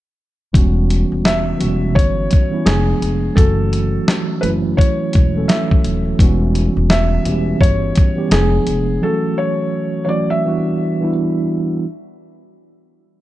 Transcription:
0.53 E1 E3 G3 B3 C#4 F#4, kick, closed hi-hat
0.90 closed hi-hat
1.12 E1
1.25 E5, snare, closed hi-hat
1.58 E1 E3 F#3 B3 C#4 F#4, closed hi-hat
1.65 G3
1.95 G1 C#5, kick, closed hi-hat
2.31 kick, closed hi-hat
2.51 E3 G3 B3 C#4 E4
2.66 F1 F3 G#3 B3 D4 G#4, snare, closed hi-hat
3.02 F1, closed hi-hat
3.35 F#1 E3 F#3 A3 C#4 F#4 A4, kick, closed hi-hat
3.73 closed hi-hat
4.08 snare, closed hi-hat
4.41 F#1 E3 F#3 A3 C#4 B4, closed hi-hat
4.45 E4
4.77 C#5, kick, closed hi-hat
5.13 E1, kick, closed hi-hat
5.35 E3 F#3 A3 C#4 A4
5.48 E5, snare, closed hi-hat
5.71 kick
5.84 D#1, closed hi-hat
6.19 E1 E3 G3 B3 C#4, kick, closed hi-hat
6.23 F#4
6.55 closed hi-hat
6.77 E1
6.90 E5, snare, closed hi-hat
7.25 E1 E3 G3 B3 C#4 G4, closed hi-hat
7.61 G1 C#5, kick, closed hi-hat
7.96 kick, closed hi-hat
8.15 E3 G3 B3 C#4 G4
8.29 F1 F3 G#3 B3 D4 G#4, snare, closed hi-hat
8.67 F1, closed hi-hat
9.01 E3 F#3 G3 C#4 F#4 A4
9.09 A3
9.38 C#5
10.05 E3 F#3 A3 C#4 C#5 D5
10.10 F#4
10.30 E5
10.45 E3 G3 B3 D4 F#4
11.00 E3 G3 B3 D4 E4

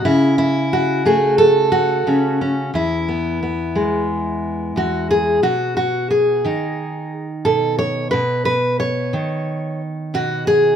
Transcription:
0.05 C#3 E4
0.38 E4
0.73 F#4
1.06 A3 G#4
1.38 A4
1.72 F#4
2.07 C#3 C#4
2.41 C#4
2.74 E2 E4
3.08 B3
3.43 B3
3.75 G#3
4.76 E2 F#4
5.11 G#4
5.43 B2 F#4
5.77 F#4
6.11 G#4
6.45 D#3 D#4
7.45 B2 A4
7.79 C#5
8.11 B2 B4
8.45 B4
8.80 C#5
9.13 D#3
10.14 B2 F#4
10.47 G#4

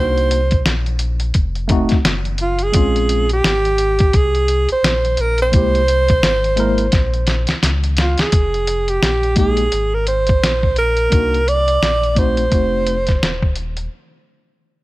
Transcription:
Already playing: C2 A#3 D4 D#4 F#4 C5
0.17 closed hi-hat
0.31 closed hi-hat
0.51 kick, closed hi-hat
0.66 A#1, snare, closed hi-hat
0.86 closed hi-hat
0.99 closed hi-hat
1.20 closed hi-hat
1.34 F1, kick, closed hi-hat
1.55 closed hi-hat
1.68 A3 C4 D#4, kick, closed hi-hat
1.72 F#4
1.89 F#1, kick, snare, closed hi-hat
2.05 F#1, snare, closed hi-hat
2.25 closed hi-hat
2.38 F4, closed hi-hat
2.59 closed hi-hat
2.63 G#4
2.72 A#1 G#3 C4 C#4, kick, closed hi-hat
2.76 F4
2.96 closed hi-hat
3.09 closed hi-hat
3.29 G4, closed hi-hat
3.44 G#1, snare, closed hi-hat
3.65 closed hi-hat
3.78 closed hi-hat
3.99 kick, closed hi-hat
4.13 C2 G#4, kick, closed hi-hat
4.35 closed hi-hat
4.48 closed hi-hat
4.69 A#1 C5, closed hi-hat
4.83 A#1, snare, closed hi-hat
5.05 closed hi-hat
5.17 A#1 A#4, closed hi-hat
5.38 closed hi-hat
5.42 C5
5.52 C2 G#3 A#3 E4, kick, closed hi-hat
5.56 G4
5.75 closed hi-hat
5.88 closed hi-hat
6.08 kick, closed hi-hat
6.23 G#1, snare, closed hi-hat
6.44 closed hi-hat
6.56 G#3 A#3 E4 A#4, closed hi-hat
6.78 closed hi-hat
6.92 A#1, kick, snare, closed hi-hat
7.14 closed hi-hat
7.27 snare, closed hi-hat
7.47 C#2, snare, closed hi-hat
7.63 C#2, snare, closed hi-hat
7.84 closed hi-hat
7.97 F4, snare, closed hi-hat
8.18 C#2 G#4, snare, closed hi-hat
8.32 F1, kick, closed hi-hat
8.54 closed hi-hat
8.67 closed hi-hat
8.88 G4, closed hi-hat
9.03 A#1, snare, closed hi-hat
9.23 closed hi-hat
9.36 G#3 A#3 D#4 G4 G#4, kick, closed hi-hat
9.57 closed hi-hat
9.72 G#1, closed hi-hat
9.94 A#4
10.07 C5, closed hi-hat
10.27 kick, closed hi-hat
10.42 A#1, snare, closed hi-hat
10.63 kick
10.76 A#4, closed hi-hat
10.97 closed hi-hat
11.10 C2 A#3 D4 D#4, kick, closed hi-hat
11.14 F#4
11.34 closed hi-hat
11.48 D5, closed hi-hat
11.68 closed hi-hat
11.82 A#1, snare, closed hi-hat
12.03 closed hi-hat
12.15 A3 C4 D#4 F#4 C5, kick, closed hi-hat
12.37 closed hi-hat
12.51 F1 A3 C4 D#4 F#4, kick, closed hi-hat
12.87 closed hi-hat
13.07 kick, snare, closed hi-hat
13.22 D#1, snare, closed hi-hat
13.42 kick
13.56 closed hi-hat
13.77 closed hi-hat

